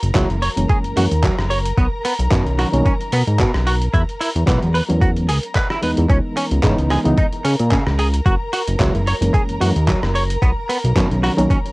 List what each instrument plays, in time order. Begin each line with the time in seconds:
Already playing: string section A#4 A#5
0.03 analog synth bass F#1, closed hi-hat
0.14 analog synth bass C#2, reed electric piano E3 G#3 A#3 E4, clean electric guitar F#3, kick, clap, closed hi-hat
0.30 analog synth bass F#1, closed hi-hat
0.42 clean electric guitar C#5, open hi-hat
0.56 analog synth bass F#1, reed electric piano E3 G#3 A#3 C#4, closed hi-hat
0.69 clean electric guitar G#4, kick, closed hi-hat
0.84 analog synth bass F#2, closed hi-hat
0.96 analog synth bass F#2, reed electric piano E3 G#3 A#3 C#4, clean electric guitar F#4, open hi-hat
1.11 analog synth bass D#2, closed hi-hat
1.23 clean electric guitar F#3, kick, clap, closed hi-hat
1.39 analog synth bass F#1, cross-stick
1.50 clean electric guitar C#5, open hi-hat
1.65 closed hi-hat
1.77 analog synth bass B1, clean electric guitar B3, kick, closed hi-hat
2.05 clean electric guitar B3, open hi-hat
2.19 analog synth bass B1, closed hi-hat
2.31 analog synth bass F#2, clean electric guitar B2, reed electric piano D#3 F#3 C#4 A#4, kick, clap, closed hi-hat
2.46 analog synth bass B1, closed hi-hat
2.59 clean electric guitar F#4, cross-stick, open hi-hat
2.72 analog synth bass B1, reed electric piano D#3 F#3 A#3 C#4, closed hi-hat
2.85 clean electric guitar C#4, kick, closed hi-hat
3.01 closed hi-hat
3.12 analog synth bass B2, clean electric guitar B3, open hi-hat
3.27 analog synth bass G#2, closed hi-hat
3.39 clean electric guitar B2, kick, clap, closed hi-hat
3.54 analog synth bass B1, cross-stick
3.67 clean electric guitar F#4, open hi-hat
3.81 closed hi-hat
3.93 analog synth bass E2, clean electric guitar E4, kick, closed hi-hat
4.09 closed hi-hat
4.20 clean electric guitar E4, open hi-hat
4.35 analog synth bass E2, closed hi-hat
4.46 analog synth bass B1, clean electric guitar E3, reed electric piano F#3 G#3 B3 F#4, kick, clap, closed hi-hat
4.63 analog synth bass E2, closed hi-hat
4.74 clean electric guitar B4, open hi-hat
4.88 analog synth bass E2, reed electric piano F#3 G#3 B3 C#4, closed hi-hat
5.01 clean electric guitar F#4, kick, closed hi-hat
5.17 closed hi-hat
5.29 analog synth bass C#2, clean electric guitar G#4, open hi-hat
5.43 closed hi-hat
5.55 clean electric guitar B4, kick, clap, closed hi-hat
5.70 clean electric guitar E4, cross-stick
5.82 analog synth bass E2, reed electric piano E3 G#3 B3 D#4, clean electric guitar B4, open hi-hat
5.97 analog synth bass E2, closed hi-hat
6.10 analog synth bass C#2, clean electric guitar C#4, string section A#4 A#5, kick, closed hi-hat
6.37 clean electric guitar C#4, open hi-hat
6.51 analog synth bass C#2, closed hi-hat
6.63 analog synth bass G#2, clean electric guitar C#3, reed electric piano E3 G#3 B3 D#4, kick, clap, closed hi-hat
6.78 analog synth bass C#2, closed hi-hat
6.90 clean electric guitar G#4, cross-stick, open hi-hat
7.04 analog synth bass C#2, reed electric piano E3 G#3 B3 D#4, closed hi-hat
7.18 clean electric guitar D#4, kick, closed hi-hat
7.32 closed hi-hat
7.44 analog synth bass C#3, clean electric guitar C#4, open hi-hat
7.59 analog synth bass A#2, closed hi-hat
7.71 clean electric guitar C#3, kick, clap, closed hi-hat
7.87 analog synth bass C#2, cross-stick
7.99 clean electric guitar G#4, open hi-hat
8.14 closed hi-hat
8.26 analog synth bass F#1, clean electric guitar F#4, kick, closed hi-hat
8.53 clean electric guitar F#4, open hi-hat
8.67 analog synth bass F#1, closed hi-hat
8.79 analog synth bass C#2, reed electric piano E3 G#3 A#3 E4, clean electric guitar F#3, kick, clap, closed hi-hat
8.95 analog synth bass F#1, closed hi-hat
9.07 clean electric guitar C#5, open hi-hat
9.21 analog synth bass F#1, reed electric piano E3 G#3 A#3 C#4, closed hi-hat
9.34 clean electric guitar G#4, kick, closed hi-hat
9.49 analog synth bass F#2, closed hi-hat
9.60 analog synth bass F#2, reed electric piano E3 G#3 A#3 C#4, clean electric guitar F#4, open hi-hat
9.76 analog synth bass D#2, closed hi-hat
9.88 clean electric guitar F#3, kick, clap, closed hi-hat
10.03 analog synth bass F#1, cross-stick
10.15 clean electric guitar C#5, open hi-hat
10.30 closed hi-hat
10.42 analog synth bass B1, clean electric guitar B3, kick, closed hi-hat
10.69 clean electric guitar B3, open hi-hat
10.84 analog synth bass B1, closed hi-hat
10.95 analog synth bass F#2, clean electric guitar B2, reed electric piano D#3 F#3 C#4 A#4, kick, clap, closed hi-hat
11.11 analog synth bass B1, closed hi-hat
11.23 clean electric guitar F#4, cross-stick, open hi-hat
11.37 analog synth bass B1, reed electric piano D#3 F#3 A#3 C#4, closed hi-hat
11.50 clean electric guitar C#4, kick, closed hi-hat
11.66 closed hi-hat